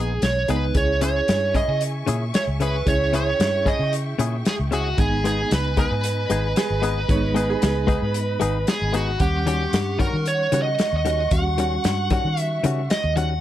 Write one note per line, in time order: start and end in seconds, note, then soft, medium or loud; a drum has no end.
0.00 0.20 A#1 medium
0.00 0.12 G#3 medium
0.00 0.45 G#3 medium
0.00 0.12 B3 medium
0.00 0.45 B3 medium
0.00 0.13 D#4 medium
0.00 0.45 D#4 medium
0.00 0.13 G#4 medium
0.00 0.27 G#4 medium
0.22 0.46 B1 medium
0.22 0.50 C#5 medium
0.22 snare loud
0.22 closed hi-hat medium
0.48 0.73 C#2 medium
0.48 0.75 G#3 soft
0.48 0.65 G#3 medium
0.48 0.75 B3 soft
0.48 0.65 B3 medium
0.48 0.75 D#4 soft
0.48 0.65 D#4 medium
0.48 0.66 G#4 medium
0.48 0.74 B4 medium
0.48 closed hi-hat medium
0.75 1.21 C#2 medium
0.75 2.83 C#4 soft
0.75 2.83 E4 medium
0.75 2.83 G#4 medium
0.75 1.01 C#5 medium
0.75 4.95 E5 medium
0.75 2.85 G#5 medium
0.75 4.95 C#6 medium
0.75 kick loud
0.75 closed hi-hat medium
1.01 1.18 C#3 medium
1.01 1.18 C#4 medium
1.01 1.18 E4 medium
1.01 1.19 G#4 medium
1.01 1.56 C#5 medium
1.01 closed hi-hat medium
1.28 1.63 G2 medium
1.28 snare loud
1.28 closed hi-hat medium
1.54 1.70 C#3 medium
1.54 1.71 C#4 medium
1.54 1.71 E4 medium
1.54 1.71 G#4 medium
1.54 1.80 D#5 medium
1.54 kick medium
1.54 closed hi-hat medium
1.68 2.02 C#3 medium
1.81 closed hi-hat medium
2.07 2.31 A#2 medium
2.07 2.23 C#3 medium
2.07 2.23 C#4 loud
2.07 2.24 E4 loud
2.07 2.24 G#4 loud
2.07 closed hi-hat medium
2.34 2.42 C#5 medium
2.34 snare loud
2.34 closed hi-hat medium
2.47 2.81 C#2 medium
2.60 2.76 C#3 medium
2.60 2.77 C#4 medium
2.60 2.77 E4 medium
2.60 2.77 G#4 medium
2.60 2.88 B4 medium
2.60 closed hi-hat medium
2.86 3.32 C#2 medium
2.86 4.94 C#4 medium
2.86 4.94 E4 medium
2.86 4.94 G#4 medium
2.86 3.14 C#5 medium
2.86 4.96 G5 medium
2.86 kick loud
2.86 closed hi-hat medium
3.13 3.29 C#3 medium
3.13 3.29 C#4 medium
3.13 3.30 E4 medium
3.13 3.30 G#4 medium
3.13 3.69 C#5 medium
3.13 closed hi-hat medium
3.40 3.74 G2 medium
3.40 snare loud
3.40 closed hi-hat medium
3.65 3.82 C#3 medium
3.65 3.82 C#4 medium
3.65 3.82 E4 medium
3.65 3.83 G#4 medium
3.65 3.92 D#5 medium
3.65 kick medium
3.65 closed hi-hat medium
3.79 4.13 C#3 medium
3.93 closed hi-hat medium
4.19 4.42 A#2 loud
4.19 4.35 C#3 loud
4.19 4.35 C#4 medium
4.19 4.35 E4 medium
4.19 4.36 G#4 loud
4.19 closed hi-hat medium
4.45 4.54 G#4 medium
4.45 snare loud
4.45 closed hi-hat medium
4.59 4.93 C#2 medium
4.71 4.87 C#3 medium
4.71 4.88 C#4 medium
4.71 4.88 E4 medium
4.71 5.00 F#4 medium
4.71 4.88 G#4 medium
4.71 closed hi-hat medium
4.97 5.44 G#1 loud
4.97 7.05 G#3 medium
4.97 7.05 B3 medium
4.97 7.06 D#4 medium
4.97 5.26 G#4 medium
4.97 9.17 D#5 medium
4.97 7.08 G#5 medium
4.97 9.17 B5 medium
4.97 kick loud
4.97 closed hi-hat medium
5.24 5.40 G#3 medium
5.24 5.41 B3 medium
5.24 5.41 D#4 medium
5.24 5.42 G#4 medium
5.24 5.50 G#4 medium
5.24 closed hi-hat medium
5.51 5.86 C#2 loud
5.51 5.79 B4 medium
5.51 snare loud
5.51 closed hi-hat medium
5.77 5.93 G#3 medium
5.77 5.94 B3 medium
5.77 5.94 D#4 medium
5.77 5.94 G#4 medium
5.77 8.78 B4 medium
5.77 kick medium
5.77 closed hi-hat medium
5.91 6.25 G#2 medium
6.04 closed hi-hat medium
6.30 6.53 G#1 medium
6.30 6.46 G#3 medium
6.30 6.46 B3 medium
6.30 6.47 D#4 medium
6.30 6.47 G#4 medium
6.30 closed hi-hat medium
6.56 6.83 G#4 medium
6.56 snare loud
6.56 closed hi-hat medium
6.70 7.04 G#1 medium
6.82 6.98 G#3 medium
6.82 6.99 B3 medium
6.82 6.99 D#4 medium
6.82 6.99 G#4 medium
6.82 7.09 B4 medium
6.82 closed hi-hat medium
7.08 7.55 G#1 medium
7.08 9.16 G#3 medium
7.08 9.16 B3 medium
7.08 9.17 D#4 medium
7.08 7.36 C#5 medium
7.08 kick loud
7.08 closed hi-hat medium
7.34 7.51 G#3 medium
7.34 7.51 B3 medium
7.34 7.52 D#4 medium
7.34 7.52 G#4 medium
7.34 7.49 B4 medium
7.34 closed hi-hat medium
7.50 7.62 G#4 medium
7.62 7.97 C#2 loud
7.62 8.14 G#4 medium
7.62 snare loud
7.62 closed hi-hat medium
7.87 8.04 G#3 medium
7.87 8.04 B3 medium
7.87 8.05 D#4 loud
7.87 8.05 G#4 loud
7.87 kick medium
7.87 closed hi-hat medium
8.02 8.36 G#2 medium
8.14 closed hi-hat medium
8.40 8.64 G#1 medium
8.40 8.57 G#3 medium
8.40 8.57 B3 loud
8.40 8.57 D#4 loud
8.40 8.58 G#4 loud
8.40 closed hi-hat medium
8.67 8.96 G#4 medium
8.67 snare loud
8.67 closed hi-hat medium
8.82 9.16 G#1 medium
8.93 9.09 G#3 medium
8.93 9.10 B3 medium
8.93 9.10 D#4 medium
8.93 9.21 F#4 medium
8.93 9.10 G#4 medium
8.93 closed hi-hat medium
9.20 9.66 D#2 medium
9.20 11.28 G3 medium
9.20 11.28 C#4 medium
9.20 9.45 G4 medium
9.20 13.39 F#5 medium
9.20 11.28 F#5 medium
9.20 13.39 C#6 medium
9.20 kick loud
9.20 closed hi-hat medium
9.46 9.63 D#3 medium
9.46 9.63 G3 medium
9.46 9.63 C#4 medium
9.46 9.64 F#4 medium
9.46 9.99 G4 medium
9.46 closed hi-hat medium
9.73 10.08 G2 loud
9.73 snare loud
9.73 closed hi-hat medium
9.99 10.15 D#3 medium
9.99 10.16 G3 medium
9.99 10.16 C#4 medium
9.99 10.16 F#4 medium
9.99 10.27 A#4 medium
9.99 kick medium
9.99 closed hi-hat medium
10.13 10.47 D#3 medium
10.26 10.62 C#5 medium
10.26 closed hi-hat medium
10.52 10.75 C#3 medium
10.52 10.68 D#3 medium
10.52 10.69 G3 medium
10.52 10.69 C#4 medium
10.52 10.69 F#4 medium
10.52 closed hi-hat medium
10.62 10.95 D#5 medium
10.79 snare loud
10.79 closed hi-hat medium
10.93 11.27 D#2 medium
10.93 11.29 D#5 medium
11.05 11.21 D#3 medium
11.05 11.22 G3 medium
11.05 11.22 C#4 medium
11.05 11.22 F#4 medium
11.05 closed hi-hat medium
11.31 11.77 D#2 loud
11.31 13.39 G3 medium
11.31 13.39 C#4 medium
11.31 13.39 F#4 medium
11.31 12.40 F#5 loud
11.31 kick loud
11.31 closed hi-hat medium
11.58 11.74 D#3 medium
11.58 11.74 G3 medium
11.58 11.75 C#4 medium
11.58 11.75 F#4 medium
11.58 closed hi-hat medium
11.84 12.19 G2 loud
11.84 snare loud
11.84 closed hi-hat medium
12.10 12.27 D#3 medium
12.10 12.27 G3 medium
12.10 12.28 C#4 medium
12.10 12.28 F#4 loud
12.10 kick medium
12.10 closed hi-hat medium
12.24 12.58 D#3 medium
12.37 12.90 E5 loud
12.37 closed hi-hat medium
12.64 12.87 C#3 loud
12.64 12.80 D#3 loud
12.64 12.80 G3 medium
12.64 12.80 C#4 loud
12.64 12.81 F#4 loud
12.64 closed hi-hat medium
12.90 13.16 D#5 medium
12.90 snare loud
12.90 closed hi-hat medium
13.04 13.38 D#2 medium
13.16 13.32 D#3 medium
13.16 13.33 G3 medium
13.16 13.33 C#4 medium
13.16 13.33 F#4 medium
13.16 13.41 F#5 loud
13.16 closed hi-hat medium